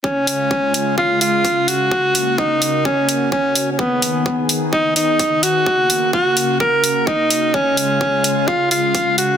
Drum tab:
HH |-o-o-ooo|-o-o-o-o|-o-o-ooo|-o-o-o-o|
BD |o-o-o-o-|o-o-o-o-|o-o-o-o-|o-o-o-o-|

HH |-o-o-ooo|
BD |o-o-o-o-|